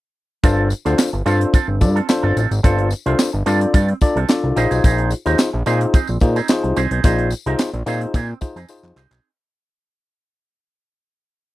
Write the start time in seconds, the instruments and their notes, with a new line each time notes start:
0.43 analog synth bass G1, clean electric guitar C4 F4 A4, tine electric piano D4 F4 A4 C5, kick, closed hi-hat, tambourine
0.70 muted clean electric guitar stroke, closed hi-hat, tambourine
0.85 analog synth bass D2, clean electric guitar C4 F4 C5, tine electric piano D4 F4 A4 C5, closed hi-hat, tambourine
0.99 muted clean electric guitar stroke, snare, clap, tambourine
1.13 analog synth bass G1, muted clean electric guitar stroke, closed hi-hat
1.26 analog synth bass G2, clean electric guitar C4 F4 A4, tine electric piano D4 F4 A4 C5, closed hi-hat, tambourine
1.41 muted clean electric guitar stroke, closed hi-hat
1.53 clean electric guitar C4 F4 A4, kick, closed hi-hat, tambourine
1.68 analog synth bass G1, muted clean electric guitar stroke
1.81 analog synth bass G2, tine electric piano D4 F4 A4 D5, muted clean electric guitar stroke, kick, closed hi-hat, tambourine
1.95 clean electric guitar C4 F4 A4, closed hi-hat
2.08 tine electric piano D4 F4 A4 C5, muted clean electric guitar stroke, snare, clap, tambourine
2.23 analog synth bass G1, clean electric guitar C4 F4 A4
2.36 analog synth bass A1, clean electric guitar C4 F4 A4, closed hi-hat, tambourine
2.51 analog synth bass G#1, muted clean electric guitar stroke, closed hi-hat, tambourine
2.63 analog synth bass G1, clean electric guitar C4 F4 A4, tine electric piano D4 F4 A4 C5, kick, closed hi-hat, tambourine
2.79 closed hi-hat
2.90 muted clean electric guitar stroke, closed hi-hat, tambourine
3.06 analog synth bass C2, clean electric guitar C4 F4 C5, tine electric piano D4 F4 A4 C5, closed hi-hat
3.19 muted clean electric guitar stroke, snare, clap, tambourine
3.33 analog synth bass G1, muted clean electric guitar stroke
3.46 analog synth bass G2, clean electric guitar C4 F4 A4, tine electric piano D4 F4 A4 D5, closed hi-hat, tambourine
3.61 muted clean electric guitar stroke, closed hi-hat
3.73 analog synth bass G2, clean electric guitar C4 F4 A4, kick, closed hi-hat, tambourine
3.88 muted clean electric guitar stroke, closed hi-hat
4.01 tine electric piano D4 F4 A4 D5, muted clean electric guitar stroke, kick, closed hi-hat, tambourine
4.16 analog synth bass C2, clean electric guitar C4 F4 A4, closed hi-hat
4.29 tine electric piano D4 F4 A4 D5, snare, clap, tambourine
4.44 analog synth bass C2, muted clean electric guitar stroke
4.56 analog synth bass A#1, clean electric guitar C4 D#4 G#4, tine electric piano D#4 F4 G#4 C5, closed hi-hat, tambourine
4.71 analog synth bass B1, clean electric guitar C4 D#4 G#4, closed hi-hat, tambourine
4.84 analog synth bass A#1, clean electric guitar C4 D#4 G#4, kick, closed hi-hat, tambourine
4.98 closed hi-hat
5.11 muted clean electric guitar stroke, closed hi-hat, tambourine
5.26 analog synth bass D#2, clean electric guitar C4 D#4 A#4, tine electric piano D#4 F4 G#4 C5, closed hi-hat, tambourine
5.39 muted clean electric guitar stroke, snare, clap, tambourine
5.53 analog synth bass A#1, muted clean electric guitar stroke
5.66 analog synth bass A#2, clean electric guitar C4 D#4 G#4, tine electric piano D#4 F4 G#4 C5, closed hi-hat, tambourine
5.81 muted clean electric guitar stroke, closed hi-hat
5.93 clean electric guitar C4 D#4 G#4, kick, closed hi-hat, tambourine
6.07 analog synth bass A#1, muted clean electric guitar stroke, tambourine
6.20 analog synth bass A#2, tine electric piano D#4 F4 G#4 C5, muted clean electric guitar stroke, kick, closed hi-hat, tambourine
6.36 clean electric guitar C4 D#4 G#4, closed hi-hat, tambourine
6.48 tine electric piano D#4 F4 G#4 C5, muted clean electric guitar stroke, snare, clap, tambourine
6.63 analog synth bass C2, muted clean electric guitar stroke, closed hi-hat
6.76 analog synth bass C2, clean electric guitar C4 D#4 G#4, closed hi-hat, tambourine
6.91 analog synth bass B1, clean electric guitar C4 D#4 G#4, closed hi-hat
7.04 analog synth bass A#1, clean electric guitar C4 D#4 G#4, tine electric piano D#4 F4 G#4 C5, kick, closed hi-hat, tambourine
7.18 closed hi-hat
7.30 muted clean electric guitar stroke, closed hi-hat, tambourine
7.46 analog synth bass C2, clean electric guitar C4 D#4 A#4, tine electric piano D#4 F4 G#4 C5, closed hi-hat
7.59 muted clean electric guitar stroke, snare, clap, tambourine
7.74 analog synth bass A#1, muted clean electric guitar stroke, closed hi-hat
7.86 analog synth bass A#2, clean electric guitar C4 D#4 G#4, tine electric piano D#4 F4 G#4 C5, closed hi-hat, tambourine
8.01 muted clean electric guitar stroke, closed hi-hat
8.14 analog synth bass A#2, clean electric guitar C4 D#4 G#4, kick, closed hi-hat, tambourine
8.29 muted clean electric guitar stroke
8.41 tine electric piano D#4 F4 G#4 C5, muted clean electric guitar stroke, kick, closed hi-hat, tambourine
8.56 analog synth bass F2, clean electric guitar C4 D#4 G#4, closed hi-hat, tambourine
8.68 tine electric piano D#4 F4 G#4 C5, muted clean electric guitar stroke, clap, tambourine
8.83 analog synth bass F2, muted clean electric guitar stroke, clap
8.96 analog synth bass C2, clean electric guitar C4 D#4 G#4, clap, tambourine
9.11 analog synth bass B1, clean electric guitar C4 D#4 G#4, clap, tambourine